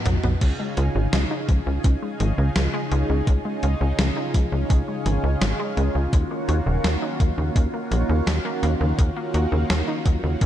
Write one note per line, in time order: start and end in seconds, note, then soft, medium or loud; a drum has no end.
0.00 0.38 B3 medium
0.00 0.38 D#4 medium
0.00 0.37 F#4 medium
0.06 0.18 B1 loud
0.06 0.13 F#3 loud
0.06 closed hi-hat medium
0.06 mid tom medium
0.23 0.36 B1 medium
0.23 0.31 B3 loud
0.23 mid tom medium
0.41 0.54 C#2 loud
0.41 6.09 C#3 medium
0.41 0.54 C#3 medium
0.41 10.46 C#4 medium
0.41 6.09 D#4 medium
0.41 10.46 F4 medium
0.41 6.09 G#4 medium
0.41 kick loud
0.41 closed hi-hat medium
0.41 crash loud
0.59 0.71 G#3 medium
0.77 0.90 C#2 medium
0.77 0.89 F4 medium
0.77 closed hi-hat medium
0.95 1.08 G#1 medium
0.95 1.07 C#3 medium
1.13 1.26 C#2 loud
1.13 1.25 F3 medium
1.13 snare loud
1.13 closed hi-hat loud
1.31 1.43 D#4 medium
1.49 1.61 C#2 medium
1.49 1.61 F3 medium
1.49 kick loud
1.49 closed hi-hat medium
1.67 1.79 C#2 medium
1.67 1.74 C#3 medium
1.84 1.97 C#2 loud
1.84 1.96 C#4 medium
1.84 kick loud
1.84 closed hi-hat medium
2.02 2.14 G#3 medium
2.20 2.33 G#1 medium
2.20 2.32 F3 medium
2.20 closed hi-hat medium
2.38 2.51 C#2 medium
2.38 2.50 C#3 medium
2.56 2.68 C#2 loud
2.56 2.68 F3 medium
2.56 snare loud
2.56 closed hi-hat loud
2.74 2.86 G#3 loud
2.92 3.04 C#2 medium
2.92 3.04 G#3 loud
2.92 closed hi-hat medium
3.09 3.22 C#2 medium
3.09 3.17 C#3 medium
3.27 3.40 C#2 loud
3.27 3.39 C#3 medium
3.27 kick loud
3.27 closed hi-hat medium
3.45 3.57 G#3 medium
3.63 3.75 C#2 medium
3.63 3.75 F4 medium
3.63 closed hi-hat medium
3.81 3.93 C#2 medium
3.81 3.93 C#3 medium
3.99 4.11 C#2 loud
3.99 4.11 F3 medium
3.99 snare loud
3.99 closed hi-hat loud
4.17 4.29 D#4 medium
4.34 4.47 C#2 medium
4.34 4.46 F3 medium
4.34 kick loud
4.34 closed hi-hat medium
4.52 4.65 C#2 medium
4.52 4.59 C#3 medium
4.70 4.83 C#2 loud
4.70 4.82 C#4 medium
4.70 kick loud
4.70 closed hi-hat medium
4.88 5.00 G#3 medium
5.06 5.18 G#1 loud
5.06 5.18 F3 medium
5.06 closed hi-hat medium
5.24 5.36 C#2 medium
5.24 5.36 C#3 medium
5.41 5.54 G#1 loud
5.41 5.54 F3 medium
5.41 snare loud
5.41 closed hi-hat loud
5.59 5.71 G#3 loud
5.77 5.90 C#2 loud
5.77 5.89 G#3 loud
5.77 closed hi-hat medium
5.95 6.08 C#2 medium
5.95 6.02 C#3 medium
6.13 6.25 D#2 loud
6.13 6.25 C#3 medium
6.13 10.46 D#3 medium
6.13 10.46 A#3 medium
6.13 10.46 F#4 medium
6.13 kick loud
6.13 closed hi-hat medium
6.31 6.43 A#3 medium
6.49 6.61 D#2 loud
6.49 6.61 F#4 medium
6.49 closed hi-hat medium
6.66 6.79 D#1 medium
6.66 6.78 C#3 medium
6.84 6.97 D#2 loud
6.84 6.96 F#3 medium
6.84 snare loud
6.84 closed hi-hat loud
7.02 7.14 D#4 medium
7.20 7.33 D#2 medium
7.20 7.32 F#3 medium
7.20 kick loud
7.20 closed hi-hat medium
7.38 7.50 D#2 medium
7.38 7.45 C#3 medium
7.56 7.68 D#2 loud
7.56 7.68 C#4 medium
7.56 kick loud
7.56 closed hi-hat medium
7.74 7.86 A#3 medium
7.91 8.04 A#1 medium
7.91 8.04 F#3 medium
7.91 closed hi-hat medium
8.09 8.22 D#2 medium
8.09 8.21 C#3 medium
8.27 8.40 D#2 loud
8.27 8.39 F#3 medium
8.27 snare loud
8.27 closed hi-hat loud
8.45 8.57 A#3 loud
8.63 8.75 D#2 loud
8.63 8.75 A#3 loud
8.63 closed hi-hat medium
8.81 8.93 D#2 medium
8.81 8.88 C#3 medium
8.99 9.11 D#2 loud
8.99 9.11 C#3 medium
8.99 kick loud
8.99 closed hi-hat medium
9.16 9.28 A#3 medium
9.34 9.47 D#2 medium
9.34 9.46 F#4 medium
9.34 closed hi-hat medium
9.52 9.65 D#2 medium
9.52 9.64 C#3 medium
9.70 9.83 D#2 loud
9.70 9.82 F#3 medium
9.70 snare loud
9.70 closed hi-hat medium
9.88 10.00 D#4 medium
10.06 10.18 D#2 medium
10.06 10.18 F#3 medium
10.06 kick loud
10.06 closed hi-hat medium
10.24 10.36 D#2 medium
10.24 10.31 C#3 medium
10.41 10.46 D#2 loud
10.41 10.46 C#4 medium
10.41 kick loud
10.41 closed hi-hat medium